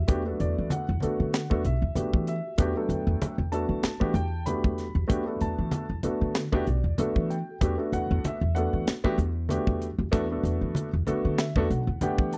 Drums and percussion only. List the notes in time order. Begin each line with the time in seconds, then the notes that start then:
0.08 kick, closed hi-hat
0.40 closed hi-hat, muted conga
0.70 closed hi-hat, high conga
1.00 closed hi-hat, high conga
1.33 snare, closed hi-hat, muted conga
1.51 kick
1.65 closed hi-hat
1.95 closed hi-hat, high conga, low conga
2.13 kick
2.27 closed hi-hat, muted conga
2.58 kick, closed hi-hat
2.90 closed hi-hat, high conga
3.22 closed hi-hat, high conga
3.52 closed hi-hat
3.83 snare, closed hi-hat, muted conga
4.01 kick
4.15 closed hi-hat
4.46 closed hi-hat, high conga
4.64 kick
4.78 snare, closed hi-hat, muted conga
5.10 kick, closed hi-hat
5.41 closed hi-hat, muted conga
5.71 closed hi-hat, high conga
6.03 closed hi-hat, high conga
6.35 snare, closed hi-hat, muted conga
6.53 kick
6.67 closed hi-hat
6.98 closed hi-hat, high conga, low conga
7.16 kick
7.30 closed hi-hat, muted conga
7.61 kick, closed hi-hat, muted conga
7.93 closed hi-hat, muted conga, high conga
8.24 closed hi-hat, high conga
8.56 closed hi-hat
8.87 snare, closed hi-hat, muted conga
9.04 kick
9.19 closed hi-hat
9.49 closed hi-hat, high conga
9.67 kick
9.81 closed hi-hat, muted conga
10.13 kick, closed hi-hat, muted conga
10.43 closed hi-hat, muted conga
10.75 closed hi-hat, high conga
11.07 closed hi-hat, high conga
11.38 snare, closed hi-hat, muted conga
11.56 kick
11.71 closed hi-hat
12.01 closed hi-hat, high conga, low conga
12.18 kick
12.31 closed hi-hat, muted conga